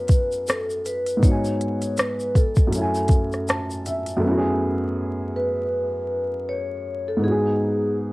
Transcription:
0.00 1.16 F#2 medium
0.00 1.17 A3 medium
0.00 1.19 B3 medium
0.00 1.20 C#4 medium
0.00 1.22 E4 medium
0.00 0.51 B4 medium
0.00 1.23 G#5 medium
0.08 kick medium
0.08 closed hi-hat medium
0.08 shaker medium
0.32 shaker soft
0.47 0.87 A4 medium
0.47 cross-stick loud
0.47 closed hi-hat medium
0.47 shaker medium
0.70 shaker soft
0.86 1.24 B4 medium
0.86 closed hi-hat medium
0.86 shaker soft
1.06 closed hi-hat medium
1.06 shaker soft
1.17 2.67 G#2 medium
1.17 2.69 B3 medium
1.23 2.71 D#4 medium
1.23 2.00 C#5 loud
1.23 kick loud
1.23 closed hi-hat medium
1.23 shaker medium
1.28 2.72 F#4 medium
1.28 2.74 G#5 medium
1.45 shaker soft
1.61 closed hi-hat medium
1.82 closed hi-hat medium
1.82 shaker medium
1.97 2.37 B4 medium
1.97 cross-stick loud
1.97 closed hi-hat medium
1.97 shaker medium
2.20 shaker medium
2.35 3.44 A4 medium
2.35 kick medium
2.35 closed hi-hat medium
2.35 shaker soft
2.56 kick medium
2.56 shaker soft
2.67 4.15 F#2 medium
2.67 4.18 A3 medium
2.73 4.21 C#4 medium
2.73 closed hi-hat medium
2.73 shaker medium
2.78 4.22 E4 medium
2.78 4.24 G#5 medium
2.95 shaker soft
3.08 kick medium
3.08 closed hi-hat medium
3.08 shaker medium
3.32 cross-stick soft
3.32 shaker soft
3.48 3.83 A5 medium
3.48 cross-stick loud
3.48 closed hi-hat medium
3.48 shaker medium
3.71 shaker soft
3.86 4.21 E5 medium
3.86 closed hi-hat medium
3.86 shaker soft
4.06 closed hi-hat medium
4.06 shaker soft
4.17 7.16 F#2 medium
4.17 7.17 A3 medium
4.23 7.19 B3 medium
4.23 7.20 C#4 medium
4.28 7.22 E4 medium
4.28 4.35 F#4 medium
4.38 7.26 G#4 medium
5.36 6.52 B4 medium
6.49 7.09 C#5 loud
7.08 7.22 A4 medium
7.17 8.13 G#2 medium
7.17 8.13 B3 medium
7.24 8.13 D#4 medium
7.24 8.13 F#4 medium
7.24 7.94 G#4 medium
7.31 8.13 G#4 medium

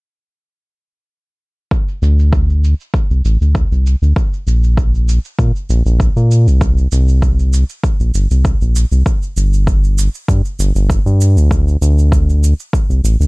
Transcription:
1.71 kick medium
1.71 cabasa soft
1.88 cabasa soft
2.02 2.74 D2 medium
2.02 cabasa medium
2.19 cabasa soft
2.33 kick medium
2.33 cabasa soft
2.50 cabasa soft
2.64 cabasa medium
2.80 cabasa soft
2.94 kick medium
2.94 cabasa soft
3.11 3.22 C2 medium
3.11 cabasa soft
3.25 3.38 A1 loud
3.25 cabasa medium
3.41 3.65 D2 medium
3.41 cabasa soft
3.55 kick medium
3.55 cabasa soft
3.72 3.96 C2 loud
3.72 cabasa soft
3.87 cabasa medium
4.02 4.13 D2 loud
4.02 cabasa soft
4.16 kick loud
4.16 cabasa soft
4.33 cabasa soft
4.47 5.19 A#1 medium
4.47 cabasa medium
4.64 cabasa soft
4.77 kick loud
4.77 cabasa soft
4.94 cabasa soft
5.09 cabasa medium
5.25 cabasa soft
5.39 5.52 A#2 loud
5.39 kick loud
5.39 cabasa soft
5.56 cabasa soft
5.70 5.82 A#1 loud
5.70 cabasa medium
5.86 6.10 A#1 medium
5.86 cabasa soft
6.00 kick medium
6.00 cabasa soft
6.16 6.49 A#2 medium
6.16 cabasa soft
6.31 cabasa medium
6.47 6.87 C2 medium
6.47 cabasa soft
6.61 kick medium
6.61 cabasa soft
6.78 cabasa soft
6.92 7.64 C2 medium
6.92 cabasa medium
7.08 cabasa soft
7.22 kick loud
7.22 cabasa soft
7.39 cabasa soft
7.53 cabasa medium
7.69 cabasa soft
7.84 kick loud
7.84 cabasa soft
8.00 8.12 A#1 medium
8.00 cabasa soft
8.14 8.27 G1 loud
8.14 cabasa medium
8.31 8.55 C2 medium
8.31 cabasa soft
8.45 kick loud
8.45 cabasa soft
8.61 8.85 A#1 loud
8.61 cabasa soft
8.76 cabasa medium
8.92 9.03 C2 medium
8.92 cabasa soft
9.06 kick medium
9.06 cabasa soft
9.22 cabasa soft
9.36 10.09 G1 medium
9.36 cabasa medium
9.53 cabasa soft
9.67 kick loud
9.67 cabasa soft
9.84 cabasa soft
9.98 cabasa medium
10.14 cabasa soft
10.28 10.42 G2 medium
10.28 kick medium
10.28 cabasa soft
10.45 cabasa soft
10.59 10.72 G1 loud
10.59 cabasa medium
10.75 11.00 G1 medium
10.75 cabasa soft
10.90 kick loud
10.90 cabasa soft
11.06 11.38 G2 medium
11.06 cabasa soft
11.21 cabasa medium
11.36 11.77 D2 loud
11.36 cabasa soft
11.51 kick medium
11.51 cabasa soft
11.68 cabasa soft
11.81 12.54 D2 medium
11.81 cabasa medium
11.98 cabasa soft
12.12 kick loud
12.12 cabasa soft
12.29 cabasa soft
12.44 cabasa medium
12.60 cabasa soft
12.73 kick medium
12.73 cabasa soft
12.89 13.01 C2 medium
12.89 cabasa soft
13.04 13.17 A1 loud
13.04 cabasa medium
13.20 13.27 D2 medium
13.20 cabasa soft

